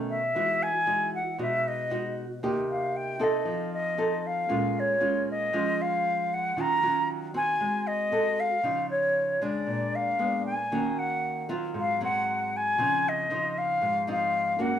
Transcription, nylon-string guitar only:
0.00 0.32 B2 medium
0.00 0.17 D#3 medium
0.00 0.18 A3 soft
0.00 0.18 C#4 medium
0.35 1.36 E3 medium
0.35 0.68 G#3 soft
0.35 0.68 D#4 medium
0.35 0.69 F#4 medium
0.86 1.20 G#3 soft
0.86 1.20 D#4 medium
0.86 1.20 F#4 medium
1.38 2.39 B2 medium
1.38 1.86 G#3 soft
1.38 1.86 D#4 medium
1.38 1.86 F#4 soft
1.90 2.23 G#3 soft
1.90 2.24 D#4 medium
1.90 2.24 F#4 medium
2.43 3.43 C3 medium
2.43 3.16 A#3 soft
2.43 3.16 D#4 soft
2.43 3.16 G4 medium
3.19 3.93 C4 medium
3.19 3.93 D#4 medium
3.19 3.93 A4 medium
3.45 4.46 F3 medium
3.98 4.47 C4 soft
3.98 4.47 D#4 soft
3.98 4.47 A4 medium
4.49 5.50 A#2 medium
4.49 4.97 G#3 medium
4.49 4.97 C#4 medium
4.49 4.97 F4 medium
5.00 5.48 G#3 medium
5.00 5.49 C#4 medium
5.00 5.49 F4 medium
5.53 6.54 F3 medium
5.53 6.52 G#3 soft
5.53 6.52 C#4 medium
5.53 6.53 F4 medium
6.57 7.58 D#3 medium
6.57 6.78 F#3 medium
6.57 6.79 C#4 medium
6.57 6.79 F4 medium
6.83 7.30 F#3 medium
6.83 7.30 C#4 medium
6.83 7.31 F4 medium
7.34 8.08 C4 medium
7.34 8.08 F#4 medium
7.61 8.61 G#3 medium
8.12 8.47 C4 soft
8.12 8.47 F#4 soft
8.12 8.47 A4 medium
8.63 9.65 C#3 medium
8.63 9.37 F3 soft
8.63 9.38 D#4 medium
9.42 10.15 G#3 medium
9.42 10.15 D4 medium
9.67 10.68 A#2 medium
10.19 10.52 G#3 soft
10.19 10.52 B3 soft
10.19 10.53 D4 medium
10.72 11.72 D#3 medium
10.72 11.45 A#3 medium
10.72 11.45 C#4 medium
10.72 11.45 F#4 medium
11.49 11.96 F#3 medium
11.49 11.97 C4 medium
11.49 11.97 F4 medium
11.74 12.75 G#2 medium
12.01 12.74 F#3 medium
12.01 12.75 C4 medium
12.78 13.79 C#3 medium
12.78 13.26 F3 soft
12.78 13.26 C4 soft
12.78 13.26 D#4 medium
13.30 14.04 F3 soft
13.30 14.04 C4 medium
13.30 14.04 D#4 medium
13.82 14.79 G#2 medium
14.07 14.55 F3 medium
14.07 14.55 C4 medium
14.07 14.56 D#4 medium
14.59 14.79 A#3 medium
14.59 14.79 C#4 medium
14.59 14.79 F#4 medium

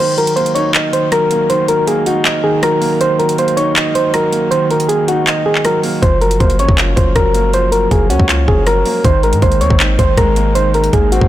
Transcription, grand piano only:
0.00 0.91 D#3 medium
0.17 1.10 F#3 medium
0.36 1.30 A#3 medium
0.56 1.50 D#4 medium
0.75 1.69 D#5 medium
0.93 1.48 D#3 medium
1.12 1.67 F#3 medium
1.32 1.86 A#3 medium
1.50 2.42 D#3 medium
1.68 2.61 F#3 medium
1.87 2.80 A#3 medium
2.07 3.01 D#4 loud
2.25 3.19 D#5 medium
2.44 2.99 D#3 medium
2.62 3.18 F#3 medium
2.81 3.37 A#3 medium
3.00 3.93 D#3 medium
3.20 4.12 F#3 medium
3.38 4.31 A#3 medium
3.57 4.51 D#4 loud
3.76 4.70 D#5 medium
3.95 4.50 D#3 medium
4.13 4.69 F#3 medium
4.32 4.87 A#3 medium
4.52 5.45 D#3 medium
4.70 5.63 F#3 medium
4.89 5.82 A#3 medium
5.08 6.03 D#4 medium
5.28 6.03 D#5 medium
5.46 6.03 D#3 medium
5.65 6.03 F#3 medium
5.84 6.03 A#3 medium
6.02 6.95 F3 medium
6.22 7.15 F#3 medium
6.40 7.33 A#3 medium
6.59 7.53 C#4 medium
6.78 7.72 F4 medium
6.97 7.52 F3 medium
7.16 7.70 F#3 medium
7.35 7.90 A#3 medium
7.54 8.47 F3 medium
7.72 8.65 F#3 medium
7.91 8.85 A#3 medium
8.10 9.04 C#4 loud
8.29 9.04 F4 medium
8.48 9.05 F3 medium
8.67 9.05 F#3 medium
8.86 9.05 A#3 medium
9.04 9.98 D#3 medium
9.24 10.16 G#3 medium
9.42 10.35 A#3 medium
9.61 10.56 C4 medium
9.80 10.74 D#4 medium
9.99 10.54 D#3 medium
10.17 10.73 G#3 medium
10.37 10.92 A#3 medium
10.56 11.28 D#3 medium
10.74 11.28 G#3 medium
10.93 11.28 A#3 medium
11.12 11.28 C4 loud

